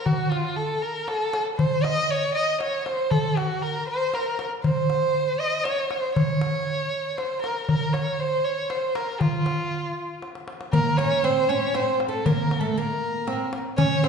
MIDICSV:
0, 0, Header, 1, 4, 480
1, 0, Start_track
1, 0, Tempo, 508475
1, 59, Time_signature, 3, 2, 24, 8
1, 13297, End_track
2, 0, Start_track
2, 0, Title_t, "Violin"
2, 0, Program_c, 0, 40
2, 48, Note_on_c, 0, 66, 79
2, 288, Note_on_c, 0, 65, 71
2, 303, Note_off_c, 0, 66, 0
2, 530, Note_on_c, 0, 69, 74
2, 544, Note_off_c, 0, 65, 0
2, 774, Note_on_c, 0, 70, 75
2, 788, Note_off_c, 0, 69, 0
2, 1015, Note_on_c, 0, 69, 80
2, 1029, Note_off_c, 0, 70, 0
2, 1377, Note_off_c, 0, 69, 0
2, 1487, Note_on_c, 0, 72, 80
2, 1734, Note_on_c, 0, 75, 89
2, 1748, Note_off_c, 0, 72, 0
2, 1988, Note_on_c, 0, 73, 91
2, 2002, Note_off_c, 0, 75, 0
2, 2211, Note_off_c, 0, 73, 0
2, 2216, Note_on_c, 0, 75, 80
2, 2441, Note_off_c, 0, 75, 0
2, 2466, Note_on_c, 0, 73, 85
2, 2697, Note_on_c, 0, 72, 76
2, 2711, Note_off_c, 0, 73, 0
2, 2932, Note_on_c, 0, 69, 81
2, 2946, Note_off_c, 0, 72, 0
2, 3187, Note_on_c, 0, 66, 71
2, 3201, Note_off_c, 0, 69, 0
2, 3419, Note_on_c, 0, 70, 76
2, 3433, Note_off_c, 0, 66, 0
2, 3659, Note_off_c, 0, 70, 0
2, 3664, Note_on_c, 0, 72, 83
2, 3912, Note_on_c, 0, 70, 72
2, 3926, Note_off_c, 0, 72, 0
2, 4266, Note_off_c, 0, 70, 0
2, 4379, Note_on_c, 0, 72, 84
2, 5099, Note_on_c, 0, 75, 83
2, 5114, Note_off_c, 0, 72, 0
2, 5326, Note_on_c, 0, 73, 84
2, 5340, Note_off_c, 0, 75, 0
2, 5569, Note_on_c, 0, 72, 73
2, 5583, Note_off_c, 0, 73, 0
2, 5805, Note_off_c, 0, 72, 0
2, 5811, Note_on_c, 0, 73, 84
2, 6774, Note_on_c, 0, 72, 76
2, 6788, Note_off_c, 0, 73, 0
2, 7000, Note_off_c, 0, 72, 0
2, 7006, Note_on_c, 0, 70, 66
2, 7235, Note_off_c, 0, 70, 0
2, 7240, Note_on_c, 0, 70, 80
2, 7488, Note_on_c, 0, 73, 72
2, 7502, Note_off_c, 0, 70, 0
2, 7737, Note_on_c, 0, 72, 81
2, 7751, Note_off_c, 0, 73, 0
2, 7970, Note_on_c, 0, 73, 77
2, 7984, Note_off_c, 0, 72, 0
2, 8211, Note_on_c, 0, 72, 70
2, 8225, Note_off_c, 0, 73, 0
2, 8451, Note_on_c, 0, 70, 69
2, 8465, Note_off_c, 0, 72, 0
2, 8687, Note_on_c, 0, 65, 73
2, 8702, Note_off_c, 0, 70, 0
2, 9652, Note_off_c, 0, 65, 0
2, 10132, Note_on_c, 0, 70, 90
2, 10358, Note_on_c, 0, 73, 91
2, 10372, Note_off_c, 0, 70, 0
2, 10615, Note_on_c, 0, 72, 90
2, 10629, Note_off_c, 0, 73, 0
2, 10843, Note_on_c, 0, 73, 85
2, 10858, Note_off_c, 0, 72, 0
2, 11092, Note_on_c, 0, 72, 86
2, 11106, Note_off_c, 0, 73, 0
2, 11334, Note_off_c, 0, 72, 0
2, 11416, Note_on_c, 0, 69, 71
2, 11564, Note_on_c, 0, 70, 78
2, 11578, Note_off_c, 0, 69, 0
2, 11894, Note_on_c, 0, 69, 68
2, 11908, Note_off_c, 0, 70, 0
2, 12056, Note_on_c, 0, 70, 77
2, 12070, Note_off_c, 0, 69, 0
2, 12775, Note_off_c, 0, 70, 0
2, 13006, Note_on_c, 0, 73, 97
2, 13249, Note_on_c, 0, 72, 85
2, 13263, Note_off_c, 0, 73, 0
2, 13297, Note_off_c, 0, 72, 0
2, 13297, End_track
3, 0, Start_track
3, 0, Title_t, "Oud"
3, 0, Program_c, 1, 24
3, 10131, Note_on_c, 1, 58, 71
3, 10371, Note_on_c, 1, 61, 67
3, 10382, Note_off_c, 1, 58, 0
3, 10606, Note_off_c, 1, 61, 0
3, 10610, Note_on_c, 1, 60, 77
3, 10845, Note_off_c, 1, 60, 0
3, 10849, Note_on_c, 1, 61, 72
3, 11085, Note_off_c, 1, 61, 0
3, 11089, Note_on_c, 1, 60, 67
3, 11408, Note_on_c, 1, 57, 57
3, 11422, Note_off_c, 1, 60, 0
3, 11570, Note_off_c, 1, 57, 0
3, 11574, Note_on_c, 1, 58, 74
3, 11897, Note_off_c, 1, 58, 0
3, 11900, Note_on_c, 1, 57, 62
3, 12056, Note_off_c, 1, 57, 0
3, 12060, Note_on_c, 1, 58, 66
3, 12529, Note_on_c, 1, 60, 61
3, 12552, Note_off_c, 1, 58, 0
3, 12755, Note_off_c, 1, 60, 0
3, 13007, Note_on_c, 1, 61, 85
3, 13234, Note_off_c, 1, 61, 0
3, 13250, Note_on_c, 1, 60, 73
3, 13297, Note_off_c, 1, 60, 0
3, 13297, End_track
4, 0, Start_track
4, 0, Title_t, "Darbuka"
4, 58, Note_on_c, 9, 64, 68
4, 152, Note_off_c, 9, 64, 0
4, 300, Note_on_c, 9, 63, 59
4, 395, Note_off_c, 9, 63, 0
4, 1019, Note_on_c, 9, 63, 62
4, 1113, Note_off_c, 9, 63, 0
4, 1260, Note_on_c, 9, 63, 67
4, 1354, Note_off_c, 9, 63, 0
4, 1500, Note_on_c, 9, 64, 72
4, 1595, Note_off_c, 9, 64, 0
4, 1741, Note_on_c, 9, 63, 69
4, 1835, Note_off_c, 9, 63, 0
4, 2459, Note_on_c, 9, 63, 67
4, 2554, Note_off_c, 9, 63, 0
4, 2702, Note_on_c, 9, 63, 65
4, 2796, Note_off_c, 9, 63, 0
4, 2938, Note_on_c, 9, 64, 73
4, 3033, Note_off_c, 9, 64, 0
4, 3184, Note_on_c, 9, 63, 66
4, 3279, Note_off_c, 9, 63, 0
4, 3905, Note_on_c, 9, 63, 57
4, 3999, Note_off_c, 9, 63, 0
4, 4145, Note_on_c, 9, 63, 62
4, 4239, Note_off_c, 9, 63, 0
4, 4382, Note_on_c, 9, 64, 72
4, 4477, Note_off_c, 9, 64, 0
4, 4623, Note_on_c, 9, 63, 61
4, 4717, Note_off_c, 9, 63, 0
4, 5337, Note_on_c, 9, 63, 61
4, 5432, Note_off_c, 9, 63, 0
4, 5576, Note_on_c, 9, 63, 65
4, 5670, Note_off_c, 9, 63, 0
4, 5819, Note_on_c, 9, 64, 81
4, 5913, Note_off_c, 9, 64, 0
4, 6055, Note_on_c, 9, 63, 66
4, 6149, Note_off_c, 9, 63, 0
4, 6780, Note_on_c, 9, 63, 56
4, 6874, Note_off_c, 9, 63, 0
4, 7022, Note_on_c, 9, 63, 60
4, 7117, Note_off_c, 9, 63, 0
4, 7256, Note_on_c, 9, 64, 74
4, 7350, Note_off_c, 9, 64, 0
4, 7495, Note_on_c, 9, 63, 67
4, 7589, Note_off_c, 9, 63, 0
4, 8214, Note_on_c, 9, 63, 63
4, 8308, Note_off_c, 9, 63, 0
4, 8453, Note_on_c, 9, 63, 67
4, 8547, Note_off_c, 9, 63, 0
4, 8691, Note_on_c, 9, 64, 73
4, 8786, Note_off_c, 9, 64, 0
4, 8931, Note_on_c, 9, 63, 66
4, 9025, Note_off_c, 9, 63, 0
4, 9652, Note_on_c, 9, 63, 48
4, 9746, Note_off_c, 9, 63, 0
4, 9774, Note_on_c, 9, 62, 57
4, 9868, Note_off_c, 9, 62, 0
4, 9890, Note_on_c, 9, 63, 63
4, 9984, Note_off_c, 9, 63, 0
4, 10012, Note_on_c, 9, 62, 67
4, 10107, Note_off_c, 9, 62, 0
4, 10129, Note_on_c, 9, 64, 80
4, 10223, Note_off_c, 9, 64, 0
4, 10368, Note_on_c, 9, 63, 65
4, 10463, Note_off_c, 9, 63, 0
4, 11087, Note_on_c, 9, 63, 61
4, 11181, Note_off_c, 9, 63, 0
4, 11329, Note_on_c, 9, 63, 66
4, 11424, Note_off_c, 9, 63, 0
4, 11571, Note_on_c, 9, 64, 80
4, 11666, Note_off_c, 9, 64, 0
4, 11812, Note_on_c, 9, 63, 65
4, 11906, Note_off_c, 9, 63, 0
4, 12533, Note_on_c, 9, 63, 68
4, 12628, Note_off_c, 9, 63, 0
4, 12770, Note_on_c, 9, 63, 70
4, 12865, Note_off_c, 9, 63, 0
4, 13010, Note_on_c, 9, 64, 81
4, 13105, Note_off_c, 9, 64, 0
4, 13255, Note_on_c, 9, 63, 68
4, 13297, Note_off_c, 9, 63, 0
4, 13297, End_track
0, 0, End_of_file